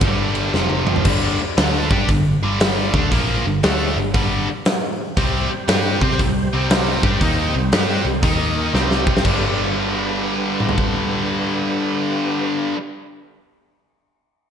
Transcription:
0.01 picked electric bass G1, distorted electric guitar G2 D3 G3, tonewheel organ G3 D4 G4 D5, kick, ride
0.35 ride
0.54 picked electric bass F1, distorted electric guitar F2 C3 F3, tonewheel organ F3 C4 F4 C5, snare
0.70 high tom
0.87 mid tom
0.96 floor tom
1.05 picked electric bass G1, distorted electric guitar G2 D3 G3, kick, crash
1.40 muted picked electric bass stroke, muted distorted electric guitar stroke
1.57 picked electric bass D2, distorted electric guitar D3 A3 D4, snare, open hi-hat
1.91 picked electric bass G2, distorted electric guitar G3 D4 G4, kick
2.08 picked electric bass G1, distorted electric guitar G2 D3, kick, open hi-hat
2.42 picked electric bass G1, distorted electric guitar G2 D3 G3
2.60 snare, open hi-hat
2.94 picked electric bass D2, distorted electric guitar D3 A3 D4, kick
3.12 picked electric bass A#1, distorted electric guitar A#2 F3 A#3, kick, open hi-hat
3.45 picked electric bass G1, distorted electric guitar G2 D3
3.63 picked electric bass D2, distorted electric guitar D3 A3 D4, snare, open hi-hat
3.96 picked electric bass G1, distorted electric guitar G2 D3
4.14 picked electric bass G1, distorted electric guitar G2 D3 G3, kick, open hi-hat
4.49 muted picked electric bass stroke, muted distorted electric guitar stroke
4.65 snare, open hi-hat
5.17 picked electric bass C2, distorted electric guitar C3 G3 C4, tonewheel organ G3 C4 G4 C5, kick, open hi-hat
5.51 muted picked electric bass stroke, muted distorted electric guitar stroke
5.68 picked electric bass G2, distorted electric guitar G3 D4 G4, snare, open hi-hat
6.01 picked electric bass C3, distorted electric guitar C4 G4 C5, kick
6.11 snare
6.19 picked electric bass C2, distorted electric guitar C3 G3, kick, open hi-hat
6.53 picked electric bass C2, distorted electric guitar C3 G3 C4
6.70 snare, open hi-hat
7.03 picked electric bass G2, distorted electric guitar G3 D4 G4, kick
7.21 picked electric bass D#2, distorted electric guitar D#3 A#3 D#4, kick, open hi-hat
7.55 picked electric bass C2, distorted electric guitar C3 G3
7.72 picked electric bass G2, distorted electric guitar G3 D4 G4, snare, open hi-hat
8.05 picked electric bass C2, distorted electric guitar C3 G3
8.22 picked electric bass D#2, distorted electric guitar D#3 A#3 D#4, tonewheel organ A#3 D#4 A#4 D#5, kick, open hi-hat
8.72 picked electric bass C2, distorted electric guitar C3 G3 C4, tonewheel organ G3 C4 G4 C5, snare
8.91 snare
9.07 kick
9.17 snare
9.24 picked electric bass G1, distorted electric guitar G2 D3 G3, tonewheel organ B3 D4 G4 B4, kick, crash
10.60 mid tom
10.69 floor tom
10.78 kick

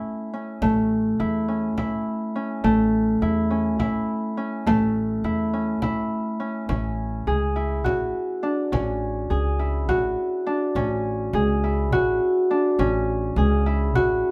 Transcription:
Already playing: harp A3 C#4 E4
0.34 harp C#4
0.62 upright bass A1, harp A3, frame drum
1.20 upright bass E2, harp E4
1.48 harp C#4
1.77 upright bass A1, harp E4, frame drum
2.36 harp C#4
2.64 upright bass A1, harp A3, frame drum
3.22 upright bass E2, harp E4
3.51 harp C#4
3.79 upright bass A1, harp E4, frame drum
4.37 harp C#4
4.66 upright bass A1, harp A3, frame drum
4.96 frame drum
5.24 upright bass E2, harp E4
5.53 harp C#4
5.82 upright bass A1, harp E4, frame drum
6.40 harp C#4
6.69 upright bass A1, harp C#4, frame drum
7.27 upright bass C#2, harp G#4
7.56 harp E4
7.84 upright bass A1, harp F#4, frame drum
8.43 harp D4
8.72 upright bass A1, harp C#4, frame drum
9.30 upright bass C#2, harp G#4
9.59 harp E4
9.89 upright bass A1, harp F#4, frame drum
10.47 harp D4
10.75 upright bass A1, harp C#4, frame drum
11.33 upright bass C#2, harp G#4
11.64 harp E4
11.92 upright bass A1, harp F#4, frame drum
12.51 harp D4
12.79 upright bass A1, harp C#4, frame drum
13.36 upright bass C#2, harp G#4
13.66 harp E4
13.95 upright bass A1, harp F#4, frame drum

